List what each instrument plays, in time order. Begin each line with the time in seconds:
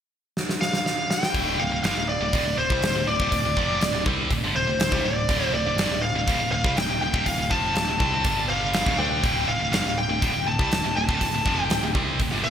0.37 snare
0.49 snare
0.61 lead electric guitar F5, snare
0.73 snare
0.86 snare
1.10 lead electric guitar G5, snare
1.23 snare
1.34 picked electric bass D1, distorted electric guitar D2 A2 D3, kick, open hi-hat
1.59 picked electric bass D1, distorted electric guitar D2 A2, lead electric guitar F5
1.71 picked electric bass D1, distorted electric guitar D2 A2
1.83 picked electric bass G1, distorted electric guitar G2 D3, lead electric guitar F5, snare, open hi-hat
1.95 picked electric bass D1, distorted electric guitar D2 A2
2.09 lead electric guitar D5
2.20 picked electric bass D1, distorted electric guitar D2 A2
2.33 picked electric bass D1, distorted electric guitar D2 A2, kick, open hi-hat
2.45 picked electric bass D1, distorted electric guitar D2 A2
2.57 picked electric bass D1, distorted electric guitar D2 A2, lead electric guitar C5
2.70 picked electric bass C2, distorted electric guitar C3 G3, kick
2.81 picked electric bass D1, distorted electric guitar D2 A2, snare, open hi-hat
2.94 picked electric bass D1, distorted electric guitar D2 A2
3.06 picked electric bass D1, distorted electric guitar D2 A2, lead electric guitar D5
3.20 picked electric bass D1, distorted electric guitar D2 A2, kick
3.32 picked electric bass D1, distorted electric guitar D2 A2, kick, open hi-hat
3.44 picked electric bass D1, distorted electric guitar D2 A2
3.57 picked electric bass F1, distorted electric guitar F2 C3 F3, kick
3.81 picked electric bass D1, distorted electric guitar D2 A2, snare, open hi-hat
3.93 picked electric bass D1, distorted electric guitar D2 A2
4.06 picked electric bass C2, distorted electric guitar C3 G3 C4, kick
4.31 picked electric bass D1, distorted electric guitar D2 A2, kick, open hi-hat
4.43 picked electric bass G1, distorted electric guitar G2 D3
4.55 picked electric bass D1, distorted electric guitar D2 A2, lead electric guitar C5
4.67 picked electric bass D1, distorted electric guitar D2 A2
4.79 picked electric bass D1, distorted electric guitar D2 A2, snare, open hi-hat
4.92 picked electric bass C2, distorted electric guitar C3 G3, kick
5.03 picked electric bass D1, distorted electric guitar D2 A2, lead electric guitar D5
5.29 picked electric bass D1, distorted electric guitar D2 A2 D3, kick, open hi-hat
5.52 picked electric bass D1, distorted electric guitar D2 A2, lead electric guitar D5
5.65 picked electric bass D1, distorted electric guitar D2 A2
5.76 picked electric bass G1, distorted electric guitar G2 D3, snare, open hi-hat
5.89 picked electric bass D1, distorted electric guitar D2 A2
6.02 lead electric guitar F5
6.14 picked electric bass D1, distorted electric guitar D2 A2
6.28 picked electric bass D1, distorted electric guitar D2 A2, kick, open hi-hat
6.39 picked electric bass D1, distorted electric guitar D2 A2
6.50 picked electric bass D1, distorted electric guitar D2 A2, lead electric guitar F5
6.64 picked electric bass C2, distorted electric guitar C3 G3, kick
6.76 picked electric bass D1, distorted electric guitar D2 A2, lead electric guitar G5, snare, open hi-hat
6.89 picked electric bass D1, distorted electric guitar D2 A2
7.01 picked electric bass D1, distorted electric guitar D2 A2, lead electric guitar G5
7.13 picked electric bass D1, distorted electric guitar D2 A2, kick
7.26 picked electric bass D1, distorted electric guitar D2 A2, lead electric guitar F5, kick, open hi-hat
7.38 picked electric bass D1, distorted electric guitar D2 A2
7.50 picked electric bass F1, distorted electric guitar F2 C3 F3, lead electric guitar A5, kick
7.75 picked electric bass D1, distorted electric guitar D2 A2, snare, open hi-hat
7.87 picked electric bass D1, distorted electric guitar D2 A2
7.99 picked electric bass C2, distorted electric guitar C3 G3 C4, kick
8.24 picked electric bass G1, distorted electric guitar G2 D3 G3, kick, open hi-hat
8.50 lead electric guitar F5
8.73 snare, open hi-hat
8.86 picked electric bass D1, distorted electric guitar D2 A2, kick
8.98 picked electric bass D2, distorted electric guitar D3 A3 D4, lead electric guitar G5
9.23 picked electric bass D1, distorted electric guitar D2 A2 D3, kick, open hi-hat
9.47 picked electric bass D1, distorted electric guitar D2 A2, lead electric guitar F5
9.60 picked electric bass D1, distorted electric guitar D2 A2
9.72 picked electric bass G1, distorted electric guitar G2 D3, lead electric guitar F5, snare, open hi-hat
9.84 picked electric bass D1, distorted electric guitar D2 A2
9.98 lead electric guitar G5
10.08 picked electric bass D1, distorted electric guitar D2 A2
10.22 picked electric bass D1, distorted electric guitar D2 A2, kick, open hi-hat
10.33 picked electric bass D1, distorted electric guitar D2 A2
10.46 picked electric bass D1, distorted electric guitar D2 A2, lead electric guitar A5
10.59 picked electric bass C2, distorted electric guitar C3 G3, kick
10.71 picked electric bass D1, distorted electric guitar D2 A2, snare, open hi-hat
10.84 picked electric bass D1, distorted electric guitar D2 A2
10.96 picked electric bass D1, distorted electric guitar D2 A2, lead electric guitar A5
11.08 picked electric bass D1, distorted electric guitar D2 A2, kick
11.21 picked electric bass D1, distorted electric guitar D2 A2, kick, open hi-hat
11.33 picked electric bass D1, distorted electric guitar D2 A2
11.46 picked electric bass F1, distorted electric guitar F2 C3 F3, kick
11.64 lead electric guitar G5
11.70 picked electric bass D1, distorted electric guitar D2 A2, snare, open hi-hat
11.83 picked electric bass D1, distorted electric guitar D2 A2
11.95 picked electric bass C2, distorted electric guitar C3 G3 C4, kick
12.20 picked electric bass D1, distorted electric guitar D2 A2, kick, open hi-hat
12.32 picked electric bass G1, distorted electric guitar G2 D3
12.44 picked electric bass D1, distorted electric guitar D2 A2, lead electric guitar F5